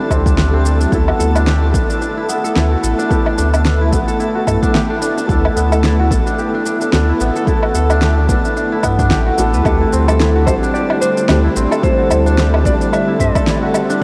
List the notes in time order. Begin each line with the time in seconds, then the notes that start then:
Already playing: D3 G3 A3 C4 E4 G4 A4 A5
0.00 D4
0.10 D2 C4, kick, low woodblock, shaker
0.26 D4, kick, shaker
0.38 D4, snare, shaker
0.53 C4
0.65 D5, shaker
0.80 D4, shaker
0.90 D2 A3 B3 E4, kick, shaker
0.94 A4
1.08 F#4, low woodblock
1.19 D2 A4, shaker
1.35 D4, low woodblock, shaker
1.47 G4, snare, shaker
1.62 D4
1.72 A1 A3 B3 D4 E4 A4, kick, shaker
1.90 D4, shaker
2.02 D4, shaker
2.17 E4
2.29 B3, shaker
2.44 A4, shaker
2.55 D2 A3 B3 E4 A4, snare, shaker
2.72 F#4
2.83 A1 A4, shaker
2.99 D4, shaker
3.09 A3 B3 E4 G4 A4, kick, shaker
3.26 D4, low woodblock
3.38 D2 D4, shaker
3.53 D4, low woodblock, shaker
3.65 D4, snare, shaker
3.81 E4
3.91 A1 A3 B3 E4, kick, shaker
3.95 A4
4.08 A4, shaker
4.20 E4, shaker
4.35 F#4
4.47 G2 A4, kick, low woodblock, shaker
4.62 D4, kick, shaker
4.75 G4, snare, shaker
4.90 D4
5.02 D4, shaker
5.17 D4, shaker
5.27 D2 A3 B3 D4 E4, kick, shaker
5.31 A4
5.45 E4, low woodblock
5.56 D2 B3, shaker
5.72 A4, low woodblock, shaker
5.84 E4, snare, shaker
5.99 F#4
6.09 A1 A3 B3 E4 A4, kick, shaker
6.27 D4, shaker
6.38 G4, shaker
6.54 D4
6.66 D4, shaker
6.81 D4, shaker
6.92 D2 A3 B3 D4 E4 A4, snare, shaker
7.09 E4
7.20 A1 B3, shaker
7.36 A4, shaker
7.45 A3 B3 E4 A4, kick, shaker
7.63 F#4, low woodblock
7.75 D2 A4, shaker
7.90 D4, low woodblock, shaker
8.02 G4, snare, shaker
8.18 D4
8.27 A1 A3 B3 D4 E4, kick, shaker
8.31 A4
8.45 D4, shaker
8.57 D4, shaker
8.72 E4
8.83 G2 B3, kick, low woodblock, shaker
8.99 D4, kick, shaker
9.11 A1 G4, snare, shaker
9.26 F#4
9.38 A1 A3 B3 D4 E4 A4, shaker
9.53 D2 B4, shaker
9.64 D2 D3 G3 A3 C4 D4 E4 A4 A5, kick, low woodblock, shaker
9.68 G4
9.81 E4
9.92 D2 C4, shaker
10.08 A4, low woodblock, shaker
10.20 E4, snare, shaker
10.36 F#4
10.45 A1 A3 C4 E4 A4 C5, kick, low woodblock, shaker
10.50 G3
10.63 D4, shaker
10.74 G4 D5, shaker
10.90 D4, low woodblock
11.01 D4 C5, shaker
11.17 D4, shaker
11.28 D2 A3 C4 D4 E4 G4, snare, low woodblock, shaker
11.44 E4
11.56 A1 C4, shaker
11.71 A4, low woodblock, shaker
11.82 G3 A3 C4 E4 C5, kick, shaker
11.99 F#4
12.11 D2 A4, low woodblock, shaker
12.26 D4, shaker
12.38 G4, snare, shaker
12.54 D4, low woodblock
12.64 A1 G3 A3 C4 D4 E4 D5, kick, shaker
12.81 D4, shaker
12.93 D4 E5, low woodblock, shaker
13.08 E4
13.19 G2 C4 D5, kick, shaker
13.35 A4, kick, low woodblock, shaker
13.47 E4, snare, shaker
13.62 F#4
13.74 A4, low woodblock, shaker
13.90 D4, shaker
14.00 A3